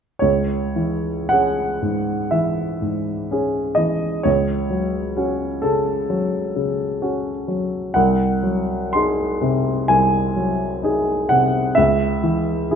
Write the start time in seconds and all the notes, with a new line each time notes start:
0.19 C#2 C#5
0.76 E3
1.29 C#4 G#4 F#5
1.82 G#2
2.31 E3 E5
2.82 G#2
3.31 C#4 G#4
3.75 E3 D#5
4.23 C#2 C#5
4.70 F#3
5.17 C#4 F#4
5.62 C#3 A4
6.10 F#3
6.56 C#3
7.02 C#4 F#4
7.48 F#3
7.94 C2 F#5
8.43 F#3
8.93 D#4 G#4 C6
9.42 C3
9.88 C2 G#5
10.36 F#3
10.83 D#4 G#4
11.29 C3 F#5
11.75 C#2 E5
12.23 E3
12.71 E4 G#4